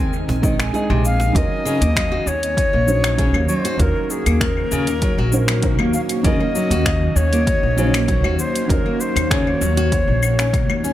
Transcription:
Already playing: upright bass D#2, felt piano G#3 C4 D#4 C5 D#5, ambient pad C4 D#4 A#4 D#5, synth texture G#5
0.00 nylon-string guitar C4
0.13 cabasa
0.28 upright bass A#1, cajon bass
0.42 nylon-string guitar D#3, felt piano G#3 C4 D#4 D#5, kick, cajon slap, cabasa
0.59 nylon-string guitar D#3, finger snap, cabasa
0.73 felt piano G#3 C4 D#4 D#5, nylon-string guitar G#4, cabasa
0.90 upright bass A#1, nylon-string guitar C3
1.05 native american-style wooden flute F5, cabasa
1.20 cajon slap, cabasa
1.33 upright bass D#2, felt piano F#3 C#4 D#4 A#4, ambient pad A#3 C#4 D#4 F#4, native american-style wooden flute D#5, kick, closed hi-hat, cabasa
1.65 nylon-string guitar C#3, cabasa
1.81 upright bass D#2, nylon-string guitar A#3, closed hi-hat, cabasa
1.96 nylon-string guitar F#3, finger snap, kick, closed hi-hat, cabasa
2.12 nylon-string guitar F#4
2.26 upright bass D#2, native american-style wooden flute C#5, cabasa
2.43 closed hi-hat, cabasa
2.57 kick, closed hi-hat, cabasa
2.73 upright bass A#1, nylon-string guitar A#3
2.87 felt piano F#3 C#4 D#4 C5, cabasa
3.04 finger snap, closed hi-hat, cabasa, claves
3.18 nylon-string guitar C#3, felt piano F#3 C#4 D#4 C#5, kick, closed hi-hat, cabasa
3.34 upright bass D#2, nylon-string guitar A#3, claves
3.49 nylon-string guitar F#3, native american-style wooden flute C5, cabasa
3.65 nylon-string guitar F#4, closed hi-hat, cabasa
3.77 upright bass D#2, felt piano F#3 C#4 D#4 A#4, native american-style wooden flute A#4, kick, closed hi-hat, cabasa
4.03 native american-style wooden flute A#4
4.10 native american-style wooden flute G#4, cabasa
4.26 upright bass D#2, nylon-string guitar A#3, closed hi-hat, cabasa, claves
4.41 native american-style wooden flute A#4, finger snap, kick, closed hi-hat, cabasa
4.72 upright bass D#2, nylon-string guitar C#3, cabasa
4.87 nylon-string guitar A#3, closed hi-hat, cabasa
5.02 nylon-string guitar F#3, kick, closed hi-hat, cabasa
5.18 upright bass A#1, nylon-string guitar F#4
5.32 felt piano F#3 C#4 D#4 C5, cabasa
5.48 finger snap, closed hi-hat, cabasa
5.63 felt piano F#3 C#4 D#4 C5, kick, closed hi-hat, cabasa
5.79 upright bass D#2, nylon-string guitar A#3, claves
5.93 native american-style wooden flute F5, cabasa
6.09 closed hi-hat, cabasa
6.23 upright bass D#2, nylon-string guitar C#3, felt piano F#3 C#4 D#4 A#4, native american-style wooden flute D#5, kick, closed hi-hat, cabasa
6.40 nylon-string guitar A#3
6.55 nylon-string guitar F#3, cabasa
6.71 upright bass D#2, nylon-string guitar F#4, closed hi-hat, cabasa
6.86 finger snap, kick, closed hi-hat, cabasa
7.16 upright bass D#2, native american-style wooden flute C#5, cabasa
7.33 nylon-string guitar A#3, closed hi-hat, cabasa
7.47 kick, closed hi-hat, cabasa
7.63 upright bass A#1
7.77 nylon-string guitar C#3, felt piano F#3 C#4 D#4 C5, cabasa
7.93 nylon-string guitar A#3, finger snap, closed hi-hat, cabasa, claves
8.07 felt piano F#3 C#4 D#4 C#5, nylon-string guitar F#3, kick, closed hi-hat, cabasa
8.24 upright bass D#2, nylon-string guitar F#4, claves
8.39 native american-style wooden flute C5, cabasa
8.56 closed hi-hat, cabasa
8.68 upright bass D#2, felt piano F#3 C#4 D#4, native american-style wooden flute A#4, kick, closed hi-hat, cabasa
8.72 felt piano A#4
8.86 nylon-string guitar A#3
9.00 native american-style wooden flute C5, cabasa
9.16 upright bass D#2, closed hi-hat, cabasa, claves
9.31 nylon-string guitar C#3, native american-style wooden flute C#5, finger snap, kick, closed hi-hat, cabasa
9.47 nylon-string guitar A#3
9.61 upright bass D#2, nylon-string guitar F#3, cabasa
9.77 nylon-string guitar F#4, closed hi-hat, cabasa
9.92 kick, closed hi-hat, cabasa
10.08 upright bass A#1
10.23 cabasa, claves
10.39 nylon-string guitar C#4, finger snap, closed hi-hat, cabasa
10.53 kick, closed hi-hat, cabasa
10.69 upright bass D#2, claves
10.84 nylon-string guitar C#4, cabasa

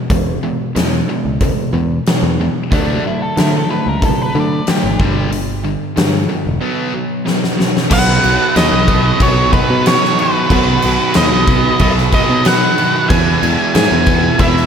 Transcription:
0.10 picked electric bass E1, distorted electric guitar E2 B2, overdriven electric guitar E3 G#3, kick, open hi-hat
0.43 distorted electric guitar E2 B2, overdriven electric guitar E3 G#3
0.75 distorted electric guitar E2 B2, picked electric bass E2, overdriven electric guitar E3 G#3, snare, open hi-hat
1.08 distorted electric guitar E2 B2, overdriven electric guitar E3 G#3
1.25 picked electric bass C#2
1.41 distorted electric guitar E2 B2, overdriven electric guitar E3 G#3, kick, open hi-hat
1.73 picked electric bass E2, distorted electric guitar E2 B2, overdriven electric guitar E3 G#3
2.06 distorted electric guitar E2 B2, overdriven electric guitar E3 G#3, snare, open hi-hat
2.23 picked electric bass E2
2.40 distorted electric guitar E2 B2, overdriven electric guitar E3 G#3
2.71 picked electric bass D2, overdriven electric guitar D3 F#3 A3, distorted electric guitar D3 A3 D4, lead electric guitar D4, kick, open hi-hat
3.04 overdriven electric guitar D3 F#3, distorted electric guitar D3 A3, lead electric guitar E4
3.22 lead electric guitar A4
3.36 overdriven electric guitar D3 F#3, picked electric bass D3, distorted electric guitar D3 A3, lead electric guitar E4, snare, open hi-hat
3.56 lead electric guitar A4
3.69 overdriven electric guitar D3 F#3, distorted electric guitar D3 A3, lead electric guitar B4
3.87 picked electric bass C#2, lead electric guitar A#4
4.02 overdriven electric guitar D3 F#3, distorted electric guitar D3 A3, lead electric guitar A4, kick, open hi-hat
4.22 lead electric guitar B4
4.35 distorted electric guitar D3 A3, picked electric bass D3, overdriven electric guitar D3 F#3
4.40 lead electric guitar D5
4.67 distorted electric guitar D3 A3, overdriven electric guitar D3 F#3, lead electric guitar G4, snare, open hi-hat
4.84 picked electric bass G#1
4.99 picked electric bass G1, distorted electric guitar G2 D3 G3, overdriven electric guitar G2 D3 G3, kick
5.31 overdriven electric guitar G2 D3, distorted electric guitar G2 D3, open hi-hat
5.64 overdriven electric guitar G2 D3, distorted electric guitar G2 D3
5.96 distorted electric guitar G2 D3, overdriven electric guitar G2 D3, picked electric bass G2, snare, open hi-hat
6.29 distorted electric guitar G2 D3, overdriven electric guitar G2 D3
6.47 picked electric bass E1
6.60 overdriven electric guitar B2 F#3 B3, distorted electric guitar B2 F#3 B3
6.93 distorted electric guitar B2 F#3, overdriven electric guitar B2 F#3
7.25 overdriven electric guitar B2 F#3, distorted electric guitar B2 F#3, snare
7.44 snare
7.57 overdriven electric guitar B2 F#3, distorted electric guitar B2 F#3, snare
7.77 snare
7.90 picked electric bass B1, distorted electric guitar B2 F#3 B3, overdriven electric guitar B2, lead electric guitar B4 F#5, kick, crash
8.23 picked electric bass B1, overdriven electric guitar F#3, crash
8.55 picked electric bass D#2, overdriven electric guitar D#4, lead electric guitar B4 D#5, snare, crash
8.73 picked electric bass B1
8.88 overdriven electric guitar B3, kick, crash
9.19 picked electric bass B1, distorted electric guitar B2 F#3 B3, overdriven electric guitar F#3, lead electric guitar F#4 C#5, kick, crash
9.53 overdriven electric guitar D#4, lead electric guitar F#4 B4, kick, crash
9.70 picked electric bass B2
9.86 overdriven electric guitar F#3, lead electric guitar F#4 C#5, snare, crash
10.04 snare
10.18 overdriven electric guitar D#3, lead electric guitar F#4 B4, crash
10.49 picked electric bass B1, distorted electric guitar B2 F#3 B3, overdriven electric guitar B2, kick, crash
10.82 picked electric bass B1, overdriven electric guitar F#3, crash
11.14 picked electric bass D#2, overdriven electric guitar D#4, lead electric guitar B4 D#5, snare, crash
11.33 picked electric bass B1
11.47 overdriven electric guitar B3, kick, crash
11.79 picked electric bass B1, distorted electric guitar B2 F#3 B3, overdriven electric guitar F#3, lead electric guitar B4 D#5, kick, crash
11.98 snare
12.11 overdriven electric guitar D#4, lead electric guitar B4 D#5, kick, crash
12.30 picked electric bass B2
12.43 overdriven electric guitar F#3, lead electric guitar B4 F#5, snare, crash
12.78 overdriven electric guitar D#3, crash
13.09 picked electric bass E2, distorted electric guitar E2 B2, overdriven electric guitar E3, lead electric guitar E5 G#5, kick, crash
13.13 distorted electric guitar E3
13.43 picked electric bass E2, overdriven electric guitar G#3, crash
13.75 picked electric bass G#2, overdriven electric guitar E4, lead electric guitar E5 G#5, snare, crash
13.91 picked electric bass E2
14.06 overdriven electric guitar B3, kick, crash
14.39 picked electric bass E2, distorted electric guitar E2 B2 E3, overdriven electric guitar G#3, lead electric guitar B4 E5, kick, crash
14.57 snare

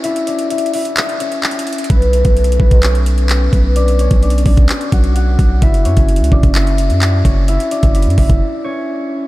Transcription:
Already playing: harp C#4 F#4 C#5
0.04 harp E4 E5, closed hi-hat
0.16 closed hi-hat
0.27 harp D4 D5, closed hi-hat
0.39 closed hi-hat
0.50 harp E4 E5, closed hi-hat
0.58 closed hi-hat
0.66 closed hi-hat
0.74 harp E4 E5, open hi-hat
0.85 closed hi-hat
0.97 clap, closed hi-hat
1.09 closed hi-hat
1.20 harp C#4 C#5, closed hi-hat
1.32 closed hi-hat
1.43 clap, closed hi-hat
1.51 closed hi-hat
1.59 closed hi-hat
1.67 closed hi-hat
1.73 closed hi-hat
1.78 closed hi-hat
1.84 closed hi-hat
1.90 808-style bass B1, harp B3 B4, kick, closed hi-hat
2.02 closed hi-hat
2.13 harp A3 A4, closed hi-hat
2.25 808-style bass B1, kick, closed hi-hat
2.37 closed hi-hat
2.44 closed hi-hat
2.52 closed hi-hat
2.60 808-style bass B1, harp B3 B4, kick
2.71 kick, closed hi-hat
2.83 harp C#4 C#5, clap, closed hi-hat
2.95 closed hi-hat
3.06 closed hi-hat
3.18 closed hi-hat
3.29 clap, closed hi-hat
3.53 808-style bass B1, harp B3 B4, kick, closed hi-hat
3.76 harp D4 D5, closed hi-hat
3.88 closed hi-hat
3.99 harp C#4 C#5, closed hi-hat
4.11 808-style bass B1, kick, closed hi-hat
4.23 harp D4 D5, closed hi-hat
4.30 closed hi-hat
4.38 closed hi-hat
4.46 808-style bass B1, harp D4 D5, kick, open hi-hat
4.57 kick, closed hi-hat
4.69 clap, closed hi-hat
4.81 closed hi-hat
4.92 808-style bass B1, harp F#4 F#5, kick, closed hi-hat
5.04 closed hi-hat
5.15 harp F#4 F#5, closed hi-hat
5.39 808-style bass B1, kick, closed hi-hat
5.62 808-style bass F#1, harp E4 E5, kick, closed hi-hat
5.74 closed hi-hat
5.85 808-style bass F#2, harp C#4 C#5, closed hi-hat
5.97 808-style bass F#1, kick, closed hi-hat
6.08 closed hi-hat
6.16 808-style bass C#2, closed hi-hat
6.24 closed hi-hat
6.32 808-style bass F#1, harp D4 D5, kick
6.43 808-style bass F#1, kick, closed hi-hat
6.55 harp E4 E5, clap, closed hi-hat
6.67 closed hi-hat
6.78 closed hi-hat
6.90 808-style bass F#2, closed hi-hat
7.02 clap, closed hi-hat
7.25 808-style bass F#1, harp C#4 C#5, kick, closed hi-hat
7.48 harp E4 E5, closed hi-hat
7.60 closed hi-hat
7.71 harp D4 D5, closed hi-hat
7.83 808-style bass F#1, kick, closed hi-hat
7.95 harp E4 E5, closed hi-hat
8.02 808-style bass F#2, closed hi-hat
8.10 closed hi-hat
8.18 808-style bass F#1, harp E4 E5, kick, open hi-hat
8.29 808-style bass F#1, kick, closed hi-hat
8.64 harp C#4 C#5

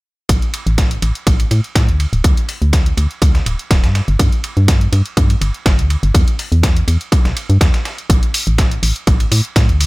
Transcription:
0.29 fm bass A1, kick, closed hi-hat, ride
0.42 closed hi-hat
0.54 closed hi-hat, ride
0.67 fm bass A1, closed hi-hat
0.78 kick, snare, closed hi-hat, ride
0.91 closed hi-hat
1.02 fm bass A1, closed hi-hat, ride
1.15 closed hi-hat
1.27 fm bass A1, kick, closed hi-hat, ride
1.40 closed hi-hat, ride
1.51 fm bass A2, closed hi-hat, ride
1.64 closed hi-hat
1.75 fm bass A2, kick, snare, closed hi-hat, ride
1.88 fm bass D2, closed hi-hat
2.00 closed hi-hat, ride
2.13 fm bass D1, closed hi-hat
2.24 fm bass D2, kick, closed hi-hat, ride
2.37 closed hi-hat
2.49 closed hi-hat, open hi-hat
2.62 fm bass D2, closed hi-hat
2.73 kick, snare, closed hi-hat, ride
2.86 closed hi-hat
2.97 fm bass D2, closed hi-hat, ride
3.11 closed hi-hat
3.22 fm bass D2, kick, closed hi-hat, ride
3.35 snare, closed hi-hat
3.46 fm bass D1, closed hi-hat, ride
3.59 closed hi-hat
3.71 fm bass D1, kick, snare, closed hi-hat, ride
3.84 fm bass G2, snare, closed hi-hat
3.95 snare, closed hi-hat, ride
4.08 fm bass G1, closed hi-hat
4.19 fm bass G2, kick, closed hi-hat, ride
4.32 closed hi-hat
4.44 closed hi-hat, ride
4.57 fm bass G2, closed hi-hat
4.68 kick, snare, closed hi-hat, ride
4.81 closed hi-hat
4.93 fm bass G2, closed hi-hat, ride
5.06 closed hi-hat
5.17 fm bass G2, kick, closed hi-hat, ride
5.30 closed hi-hat, ride
5.41 fm bass G1, closed hi-hat, ride
5.54 closed hi-hat
5.66 fm bass G1, kick, snare, closed hi-hat, ride
5.79 fm bass D2, closed hi-hat
5.90 closed hi-hat, ride
6.03 fm bass G1, closed hi-hat
6.15 fm bass E2, kick, closed hi-hat, ride
6.28 closed hi-hat
6.39 closed hi-hat, open hi-hat
6.52 fm bass E2, closed hi-hat
6.63 kick, snare, closed hi-hat, ride
6.76 closed hi-hat
6.88 fm bass E2, closed hi-hat, ride
7.01 closed hi-hat
7.12 kick, closed hi-hat, ride
7.25 fm bass B1, snare, closed hi-hat
7.37 closed hi-hat, ride
7.50 fm bass G2, closed hi-hat
7.61 fm bass E2, kick, snare, closed hi-hat, ride
7.74 snare, closed hi-hat
7.85 snare, closed hi-hat, ride
7.98 closed hi-hat
8.10 fm bass A1, kick, closed hi-hat, ride
8.23 closed hi-hat
8.34 open hi-hat, ride
8.47 fm bass A1, closed hi-hat
8.58 kick, snare, closed hi-hat, ride
8.71 closed hi-hat
8.83 fm bass A1, open hi-hat, ride
8.96 closed hi-hat
9.07 fm bass A1, kick, closed hi-hat, ride
9.20 closed hi-hat, ride
9.32 fm bass A2, open hi-hat, ride
9.45 closed hi-hat
9.56 fm bass A2, kick, snare, closed hi-hat, ride
9.69 fm bass D2, closed hi-hat
9.80 open hi-hat, ride

